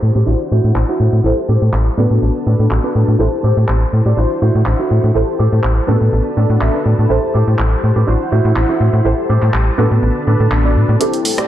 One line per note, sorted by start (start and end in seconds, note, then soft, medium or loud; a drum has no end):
0.00 0.11 A2 medium
0.00 0.22 E4 medium
0.00 0.22 G4 medium
0.00 0.27 G4 medium
0.00 0.23 A4 medium
0.00 0.23 C5 medium
0.00 0.26 C5 medium
0.00 0.25 A5 medium
0.15 0.23 A2 medium
0.15 0.27 G4 medium
0.15 0.27 A4 medium
0.15 0.27 C5 medium
0.26 0.35 A1 medium
0.26 1.20 D4 medium
0.26 1.20 E4 medium
0.26 1.24 E4 medium
0.26 1.20 F#4 medium
0.26 1.96 C5 medium
0.26 1.20 C5 medium
0.26 1.24 F#5 medium
0.52 0.60 A2 medium
0.52 0.70 E4 loud
0.52 0.71 F#4 loud
0.52 0.71 C5 loud
0.64 0.72 A2 loud
0.76 0.84 A1 medium
0.76 clap loud
0.89 1.19 E4 medium
0.89 1.19 F#4 medium
0.89 1.19 C5 medium
1.00 1.09 A2 medium
1.13 1.21 A2 medium
1.24 1.33 A1 medium
1.24 1.93 E4 medium
1.24 1.93 G4 medium
1.24 1.97 G4 medium
1.24 1.94 A4 medium
1.24 1.94 C5 medium
1.24 4.15 A5 medium
1.49 1.57 A2 medium
1.49 1.62 G4 loud
1.49 1.62 A4 medium
1.49 1.62 C5 loud
1.62 1.69 A2 loud
1.73 1.90 A1 medium
1.73 muted clean electric guitar stroke soft
1.73 clap loud
1.97 2.06 A2 loud
1.97 3.15 B3 medium
1.97 2.38 D4 medium
1.97 3.15 D4 medium
1.97 3.19 D4 medium
1.97 3.16 F#4 medium
1.97 2.37 A4 medium
1.97 3.16 A4 medium
1.97 3.19 B4 medium
1.97 2.38 B4 medium
2.11 2.18 A2 medium
2.22 2.31 A1 medium
2.47 2.55 A2 medium
2.47 2.65 D4 loud
2.47 2.65 A4 medium
2.47 2.65 B4 loud
2.60 2.67 A2 loud
2.71 2.80 A1 medium
2.71 clap loud
2.84 3.14 D4 medium
2.84 3.14 A4 medium
2.84 3.14 B4 medium
2.95 3.04 A2 medium
3.08 3.16 A2 loud
3.19 3.28 A1 medium
3.19 4.12 E4 medium
3.19 4.13 G4 medium
3.19 4.17 G4 medium
3.19 4.13 A4 medium
3.19 5.86 C5 medium
3.19 4.13 C5 medium
3.44 3.53 A2 medium
3.44 3.57 G4 loud
3.44 3.57 A4 medium
3.44 3.57 C5 loud
3.57 3.65 A2 loud
3.68 3.85 A1 medium
3.68 muted clean electric guitar stroke soft
3.68 clap loud
3.93 4.01 A2 medium
4.06 4.13 A2 medium
4.06 4.18 G4 medium
4.06 4.18 A4 medium
4.06 4.18 D5 medium
4.17 4.26 A1 medium
4.17 5.10 D4 medium
4.17 5.10 E4 medium
4.17 5.14 E4 medium
4.17 5.11 F#4 medium
4.17 5.11 C5 medium
4.17 5.14 F#5 medium
4.42 4.50 A2 medium
4.42 4.61 E4 loud
4.42 4.61 F#4 loud
4.42 4.61 C5 loud
4.55 4.62 A2 loud
4.66 4.75 A1 medium
4.66 clap loud
4.79 5.09 E4 medium
4.79 5.10 F#4 medium
4.79 5.09 A4 medium
4.91 4.99 A2 medium
5.04 5.11 A2 loud
5.14 5.24 A1 loud
5.14 5.83 E4 medium
5.14 5.83 G4 medium
5.14 5.88 G4 medium
5.14 5.84 A4 medium
5.14 5.84 C5 medium
5.14 8.05 A5 medium
5.39 5.48 A2 medium
5.39 5.52 G4 loud
5.39 5.52 A4 medium
5.39 5.52 C5 loud
5.53 5.60 A2 loud
5.64 5.80 A1 medium
5.64 muted clean electric guitar stroke soft
5.64 clap loud
5.87 5.97 A2 medium
5.87 7.05 B3 medium
5.87 7.09 D4 medium
5.87 7.05 D4 medium
5.87 6.28 D4 medium
5.87 7.06 F#4 medium
5.87 7.06 A4 loud
5.87 6.28 A4 medium
5.87 7.09 B4 medium
5.87 6.28 B4 medium
6.01 6.09 A2 medium
6.13 6.21 A1 medium
6.37 6.45 A2 loud
6.37 6.56 D4 loud
6.37 6.56 A4 loud
6.37 6.56 D5 loud
6.37 6.49 A5 medium
6.50 6.57 A2 loud
6.50 6.61 F#5 medium
6.61 6.70 A1 medium
6.61 6.84 E5 medium
6.61 clap loud
6.74 7.04 D4 medium
6.74 7.04 A4 medium
6.74 7.04 B4 medium
6.86 6.94 A2 medium
6.86 7.08 D5 medium
6.99 7.06 A2 medium
7.09 7.19 A1 medium
7.09 8.03 E4 medium
7.09 8.03 G4 medium
7.09 8.07 G4 medium
7.09 8.03 A4 medium
7.09 9.76 C5 medium
7.09 8.03 C5 medium
7.34 7.43 A2 medium
7.34 7.47 G4 loud
7.34 7.47 A4 medium
7.34 7.47 C5 loud
7.48 7.55 A2 loud
7.59 7.75 A1 medium
7.59 clap loud
7.84 7.92 A2 loud
7.96 8.04 A2 medium
7.96 8.08 G4 medium
7.96 8.08 A4 medium
7.96 8.08 B4 medium
8.07 8.16 A1 loud
8.07 9.00 D4 medium
8.07 9.01 E4 medium
8.07 9.04 E4 medium
8.07 9.01 F#4 medium
8.07 9.01 C5 medium
8.07 9.04 F#5 medium
8.32 8.40 A2 medium
8.32 8.51 E4 loud
8.32 8.51 F#4 loud
8.32 8.51 C5 loud
8.45 8.52 A2 loud
8.56 8.65 A1 medium
8.56 clap loud
8.69 9.00 E4 medium
8.69 9.00 F#4 medium
8.69 9.00 A4 medium
8.80 8.89 A2 medium
8.93 9.01 A2 loud
9.04 9.14 A1 medium
9.04 9.73 E4 medium
9.04 9.78 G4 medium
9.04 9.74 G4 medium
9.04 9.74 A4 medium
9.04 9.74 C5 medium
9.04 10.98 A5 medium
9.29 9.38 A2 medium
9.29 9.43 G4 loud
9.29 9.43 A4 loud
9.29 9.43 C5 loud
9.42 9.50 A2 loud
9.42 clap soft
9.54 9.70 A1 medium
9.54 muted clean electric guitar stroke soft
9.54 clap loud
9.78 9.87 A2 loud
9.78 10.95 B3 medium
9.78 10.96 D4 medium
9.78 10.18 D4 medium
9.78 10.99 D4 medium
9.78 10.96 F#4 medium
9.78 10.18 A4 medium
9.78 10.96 A4 loud
9.78 10.99 B4 medium
9.78 10.18 B4 medium
9.91 9.99 A2 medium
10.03 10.11 A1 medium
10.27 10.36 A2 medium
10.27 10.46 D4 loud
10.27 10.46 A4 loud
10.27 10.46 B4 loud
10.40 10.48 A2 medium
10.51 10.77 A1 medium
10.51 clap loud
10.65 10.95 D4 medium
10.65 10.95 A4 medium
10.65 10.95 D5 medium
10.76 10.84 A2 loud
10.89 10.96 A2 medium
11.00 11.09 A1 loud
11.00 11.47 C4 medium
11.00 11.47 E4 medium
11.00 11.47 G4 medium
11.00 11.19 G4 loud
11.00 11.47 G4 medium
11.00 11.19 A4 loud
11.00 11.47 A4 medium
11.00 11.47 C5 medium
11.00 11.19 C5 loud
11.00 11.47 A5 medium
11.00 closed hi-hat medium
11.14 closed hi-hat soft
11.25 11.33 A2 medium
11.25 open hi-hat loud
11.25 tambourine medium
11.38 11.45 A2 loud
11.38 11.47 G4 medium
11.38 11.47 A4 medium
11.38 11.47 D5 medium
11.38 cross-stick medium
11.38 closed hi-hat soft